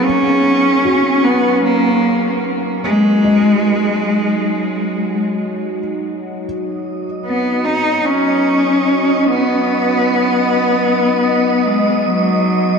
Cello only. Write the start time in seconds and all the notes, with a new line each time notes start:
0.04 C#4
1.24 B3
1.64 A#3
2.85 G#3
7.25 B3
7.65 D#4
8.05 C#4
9.27 B3
11.68 G#3
12.07 F#3